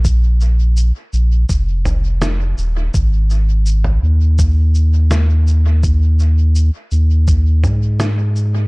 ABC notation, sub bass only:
X:1
M:4/4
L:1/8
Q:1/4=83
K:Abmix
V:1 name="Sub bass" clef=bass
B,,,2 z B,,, F,,,3 E,,, | A,,,3 E,,4- E,,- | E,,2 z E,,2 A,,3 |]